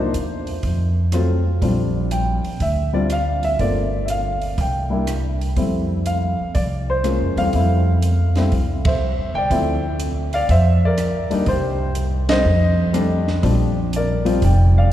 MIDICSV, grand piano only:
0, 0, Header, 1, 2, 480
1, 0, Start_track
1, 0, Key_signature, -1, "major"
1, 0, Tempo, 492611
1, 1580, Time_signature, 4, 2, 24, 8
1, 14545, End_track
2, 0, Start_track
2, 0, Title_t, "Grand piano"
2, 0, Program_c, 0, 0
2, 0, Note_on_c, 0, 53, 54
2, 0, Note_on_c, 0, 58, 51
2, 0, Note_on_c, 0, 62, 52
2, 0, Note_on_c, 0, 63, 60
2, 0, Note_on_c, 0, 72, 86
2, 121, Note_off_c, 0, 58, 0
2, 122, Note_off_c, 0, 53, 0
2, 125, Note_off_c, 0, 62, 0
2, 126, Note_off_c, 0, 63, 0
2, 910, Note_off_c, 0, 72, 0
2, 1101, Note_on_c, 0, 54, 54
2, 1105, Note_on_c, 0, 57, 52
2, 1108, Note_on_c, 0, 65, 61
2, 1109, Note_on_c, 0, 60, 52
2, 1391, Note_off_c, 0, 54, 0
2, 1393, Note_off_c, 0, 57, 0
2, 1394, Note_off_c, 0, 65, 0
2, 1395, Note_off_c, 0, 60, 0
2, 1578, Note_on_c, 0, 55, 50
2, 1584, Note_on_c, 0, 60, 41
2, 1584, Note_on_c, 0, 62, 43
2, 1594, Note_on_c, 0, 65, 50
2, 2061, Note_on_c, 0, 79, 72
2, 2317, Note_off_c, 0, 55, 0
2, 2320, Note_off_c, 0, 60, 0
2, 2320, Note_off_c, 0, 62, 0
2, 2325, Note_off_c, 0, 65, 0
2, 2552, Note_on_c, 0, 76, 73
2, 2555, Note_off_c, 0, 79, 0
2, 2847, Note_off_c, 0, 76, 0
2, 2857, Note_on_c, 0, 55, 58
2, 2858, Note_on_c, 0, 60, 47
2, 2865, Note_on_c, 0, 65, 62
2, 2866, Note_on_c, 0, 62, 50
2, 2867, Note_on_c, 0, 74, 68
2, 3001, Note_off_c, 0, 55, 0
2, 3002, Note_off_c, 0, 60, 0
2, 3005, Note_off_c, 0, 65, 0
2, 3006, Note_off_c, 0, 62, 0
2, 3011, Note_off_c, 0, 74, 0
2, 3044, Note_on_c, 0, 77, 80
2, 3356, Note_on_c, 0, 76, 74
2, 3364, Note_off_c, 0, 77, 0
2, 3502, Note_on_c, 0, 57, 42
2, 3504, Note_on_c, 0, 58, 41
2, 3505, Note_on_c, 0, 60, 37
2, 3508, Note_on_c, 0, 65, 43
2, 3511, Note_off_c, 0, 76, 0
2, 3512, Note_on_c, 0, 74, 71
2, 3950, Note_on_c, 0, 76, 55
2, 3954, Note_off_c, 0, 74, 0
2, 3987, Note_off_c, 0, 76, 0
2, 3995, Note_on_c, 0, 77, 70
2, 4239, Note_off_c, 0, 57, 0
2, 4241, Note_off_c, 0, 58, 0
2, 4241, Note_off_c, 0, 60, 0
2, 4243, Note_off_c, 0, 65, 0
2, 4482, Note_off_c, 0, 77, 0
2, 4488, Note_on_c, 0, 79, 62
2, 4774, Note_on_c, 0, 55, 49
2, 4777, Note_on_c, 0, 58, 47
2, 4781, Note_on_c, 0, 62, 42
2, 4786, Note_on_c, 0, 64, 55
2, 4920, Note_off_c, 0, 55, 0
2, 4921, Note_off_c, 0, 58, 0
2, 4924, Note_off_c, 0, 62, 0
2, 4926, Note_off_c, 0, 64, 0
2, 5239, Note_off_c, 0, 79, 0
2, 5423, Note_on_c, 0, 55, 43
2, 5425, Note_on_c, 0, 57, 44
2, 5428, Note_on_c, 0, 60, 44
2, 5432, Note_on_c, 0, 64, 49
2, 5909, Note_on_c, 0, 77, 75
2, 6161, Note_off_c, 0, 55, 0
2, 6162, Note_off_c, 0, 57, 0
2, 6163, Note_off_c, 0, 60, 0
2, 6165, Note_off_c, 0, 64, 0
2, 6352, Note_off_c, 0, 77, 0
2, 6378, Note_on_c, 0, 74, 65
2, 6451, Note_off_c, 0, 74, 0
2, 6721, Note_on_c, 0, 72, 75
2, 6855, Note_on_c, 0, 56, 49
2, 6859, Note_on_c, 0, 58, 44
2, 6866, Note_on_c, 0, 61, 44
2, 6868, Note_on_c, 0, 65, 51
2, 7149, Note_off_c, 0, 56, 0
2, 7151, Note_off_c, 0, 58, 0
2, 7155, Note_off_c, 0, 61, 0
2, 7155, Note_off_c, 0, 65, 0
2, 7188, Note_on_c, 0, 55, 44
2, 7188, Note_on_c, 0, 57, 41
2, 7190, Note_on_c, 0, 60, 40
2, 7190, Note_on_c, 0, 77, 91
2, 7199, Note_on_c, 0, 52, 49
2, 7207, Note_off_c, 0, 72, 0
2, 7337, Note_off_c, 0, 55, 0
2, 7339, Note_off_c, 0, 60, 0
2, 7340, Note_off_c, 0, 57, 0
2, 7351, Note_on_c, 0, 55, 47
2, 7354, Note_on_c, 0, 60, 38
2, 7355, Note_on_c, 0, 57, 46
2, 7356, Note_on_c, 0, 64, 55
2, 7607, Note_off_c, 0, 52, 0
2, 7637, Note_off_c, 0, 55, 0
2, 7639, Note_off_c, 0, 57, 0
2, 7639, Note_off_c, 0, 60, 0
2, 7640, Note_off_c, 0, 64, 0
2, 8147, Note_on_c, 0, 55, 49
2, 8154, Note_on_c, 0, 57, 48
2, 8156, Note_on_c, 0, 60, 53
2, 8157, Note_on_c, 0, 64, 57
2, 8287, Note_off_c, 0, 55, 0
2, 8291, Note_off_c, 0, 57, 0
2, 8292, Note_off_c, 0, 60, 0
2, 8292, Note_off_c, 0, 64, 0
2, 8631, Note_on_c, 0, 76, 66
2, 8646, Note_on_c, 0, 72, 55
2, 8746, Note_off_c, 0, 77, 0
2, 9083, Note_off_c, 0, 72, 0
2, 9111, Note_on_c, 0, 79, 97
2, 9122, Note_off_c, 0, 76, 0
2, 9138, Note_on_c, 0, 74, 69
2, 9262, Note_on_c, 0, 53, 48
2, 9263, Note_on_c, 0, 60, 53
2, 9265, Note_on_c, 0, 57, 46
2, 9270, Note_on_c, 0, 64, 64
2, 9552, Note_off_c, 0, 53, 0
2, 9553, Note_off_c, 0, 60, 0
2, 9554, Note_off_c, 0, 57, 0
2, 9556, Note_off_c, 0, 64, 0
2, 9706, Note_off_c, 0, 79, 0
2, 9719, Note_off_c, 0, 74, 0
2, 10074, Note_on_c, 0, 77, 93
2, 10085, Note_on_c, 0, 74, 73
2, 10222, Note_off_c, 0, 74, 0
2, 10231, Note_off_c, 0, 77, 0
2, 10236, Note_on_c, 0, 76, 86
2, 10244, Note_on_c, 0, 72, 54
2, 10534, Note_off_c, 0, 72, 0
2, 10561, Note_off_c, 0, 76, 0
2, 10575, Note_on_c, 0, 74, 79
2, 10587, Note_on_c, 0, 70, 61
2, 11013, Note_on_c, 0, 55, 57
2, 11016, Note_on_c, 0, 58, 50
2, 11021, Note_on_c, 0, 62, 58
2, 11027, Note_on_c, 0, 63, 64
2, 11160, Note_off_c, 0, 55, 0
2, 11161, Note_off_c, 0, 58, 0
2, 11163, Note_off_c, 0, 62, 0
2, 11163, Note_off_c, 0, 70, 0
2, 11167, Note_off_c, 0, 63, 0
2, 11188, Note_on_c, 0, 72, 76
2, 11195, Note_on_c, 0, 67, 57
2, 11215, Note_off_c, 0, 74, 0
2, 11631, Note_off_c, 0, 72, 0
2, 11634, Note_off_c, 0, 67, 0
2, 11968, Note_on_c, 0, 57, 47
2, 11971, Note_on_c, 0, 55, 57
2, 11973, Note_on_c, 0, 60, 51
2, 11979, Note_on_c, 0, 63, 63
2, 11979, Note_on_c, 0, 75, 106
2, 11999, Note_on_c, 0, 72, 79
2, 12117, Note_off_c, 0, 57, 0
2, 12118, Note_off_c, 0, 55, 0
2, 12119, Note_off_c, 0, 60, 0
2, 12122, Note_off_c, 0, 63, 0
2, 12600, Note_on_c, 0, 55, 60
2, 12606, Note_on_c, 0, 57, 55
2, 12606, Note_on_c, 0, 60, 52
2, 12613, Note_on_c, 0, 62, 66
2, 12900, Note_off_c, 0, 55, 0
2, 12901, Note_off_c, 0, 75, 0
2, 12903, Note_off_c, 0, 57, 0
2, 12903, Note_off_c, 0, 60, 0
2, 12907, Note_off_c, 0, 62, 0
2, 12911, Note_off_c, 0, 72, 0
2, 13083, Note_on_c, 0, 53, 55
2, 13087, Note_on_c, 0, 55, 51
2, 13088, Note_on_c, 0, 60, 51
2, 13091, Note_on_c, 0, 62, 56
2, 13382, Note_off_c, 0, 53, 0
2, 13384, Note_off_c, 0, 55, 0
2, 13384, Note_off_c, 0, 60, 0
2, 13386, Note_off_c, 0, 62, 0
2, 13605, Note_on_c, 0, 74, 73
2, 13611, Note_on_c, 0, 70, 57
2, 13884, Note_on_c, 0, 53, 65
2, 13885, Note_on_c, 0, 55, 54
2, 13887, Note_on_c, 0, 60, 60
2, 13888, Note_on_c, 0, 65, 72
2, 14034, Note_off_c, 0, 53, 0
2, 14034, Note_off_c, 0, 55, 0
2, 14036, Note_off_c, 0, 60, 0
2, 14036, Note_off_c, 0, 65, 0
2, 14042, Note_off_c, 0, 70, 0
2, 14072, Note_off_c, 0, 74, 0
2, 14075, Note_on_c, 0, 79, 67
2, 14087, Note_on_c, 0, 74, 51
2, 14374, Note_off_c, 0, 74, 0
2, 14399, Note_off_c, 0, 79, 0
2, 14400, Note_on_c, 0, 77, 75
2, 14405, Note_on_c, 0, 74, 59
2, 14537, Note_off_c, 0, 77, 0
2, 14540, Note_off_c, 0, 74, 0
2, 14545, End_track
0, 0, End_of_file